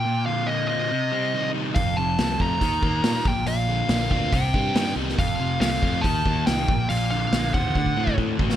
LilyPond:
<<
  \new Staff \with { instrumentName = "Lead electric guitar" } { \time 4/4 \key bes \major \tempo 4 = 140 g''8 f''8 ees''8 ees''2 r8 | f''8 a''4 bes''2 g''8 | f''4. f''8 g''4. r8 | f''4 f''4 a''4 g''4 |
f''8 f''4 fis''4. r4 | }
  \new Staff \with { instrumentName = "Overdriven electric guitar" } { \clef bass \time 4/4 \key bes \major bes,8 d8 bes8 f'8 c8 g8 ees8 g8 | f,8 c8 a8 f'8 ees8 bes8 ees8 bes,8 | bes,8 d8 bes8 f'8 c8 g8 ees8 g8 | f,8 c8 a8 f'8 ees8 bes8 ees8 bes,8 |
bes,8 d8 bes8 f'8 d8 a8 d8 a8 | }
  \new Staff \with { instrumentName = "Distorted electric guitar" } { \clef bass \time 4/4 \key bes \major bes,8 d8 d8 c'8 c8 c'8 g8 ees'8 | f,8 c8 c8 a8 ees8 bes8 g8 bes,8 | bes,8 d8 d8 c'8 c8 c'8 g8 ees'8 | f,8 c8 c8 a8 ees8 bes8 g8 bes,8 |
bes,8 d8 d8 c'8 d8 c'8 a8 fis'8 | }
  \new Staff \with { instrumentName = "Picked electric bass" } { \clef bass \time 4/4 \key bes \major r1 | f,,8 f,,8 c,8 f,8 ees,8 ees,8 bes,8 bes,,8 | bes,,4 bes,,8 d,8 c,8 g,8 g,8 c,8 | f,,8 f,,8 c,8 f,8 ees,8 ees,8 c,8 bes,,8 |
bes,,4 bes,,8 ees,8 d,8 a,8 a,8 a,,8 | }
  \new DrumStaff \with { instrumentName = "Drums" } \drummode { \time 4/4 r4 r4 r4 r4 | <hho bd>4 <hho sn>8 bd8 <hho bd>8 bd8 <hho sn>8 bd8 | hho4 <hho sn>8 bd8 <hho bd>8 bd8 <hho sn>16 sn8 sn16 | <hho bd>4 <hho sn>8 bd8 <hho bd>8 bd8 <hho sn>8 bd8 |
hho4 <hho sn>8 bd8 bd16 bd8 bd16 bd8 bd16 sn16 | }
>>